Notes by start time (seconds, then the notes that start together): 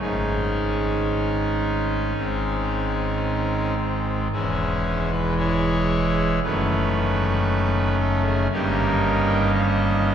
0.00 G#1 G#2 D#3 G#3 C#4 D#4 G#4
2.17 G#1 G#2 D#3 G#3 C4
4.32 E1 E2 E3 G#3 C#4 E4 G#4
5.11 B4
5.38 E4 G#4 C#5
6.43 F#1 F#2 D#3 A3 C#4 B4
8.00 A4
8.26 G#4
8.52 G1 G2 D#3 A#3 C#4 D#4 G4 A#4
9.53 D#5
9.59 F5
9.67 D#5